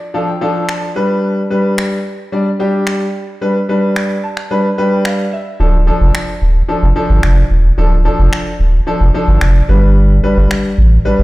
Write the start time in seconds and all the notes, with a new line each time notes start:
Already playing: D5
0.14 F3 D4 A4 F5
0.28 G5
0.41 F3 D4 A4 F5
0.69 A5, finger snap
0.82 A5
0.96 G3 D4 B4 B5
1.50 G3 D4 B4
1.78 finger snap
2.32 G3 D4 D5
2.59 G3 D4 G4
2.87 finger snap
3.41 G3 D4 B4
3.69 G3 D4 B4
3.96 finger snap
4.24 A5
4.37 finger snap
4.51 G3 D4 B4 B5
4.78 G3 D4 B4 G5
4.92 G5
5.05 F5, finger snap
5.33 E5
5.60 D1 F3 D4 A4
5.87 F3 D4 A4
6.01 F1
6.15 finger snap
6.42 D1
6.68 F3 D4 A4
6.83 F1
6.96 F3 D4 A4
7.10 G1
7.23 F1, finger snap
7.50 D#1
7.78 D1 F3 D4 A4
8.05 F3 D4 A4
8.19 F1
8.33 finger snap
8.60 D1
8.87 F3 D4 A4
9.00 F1
9.14 F3 D4 A4
9.28 G1
9.41 F1, finger snap
9.69 G1 G3 D4 B4
10.23 G3 D4 B4
10.37 G1
10.51 finger snap
10.78 A1
11.05 G3 D4 B4
11.19 G1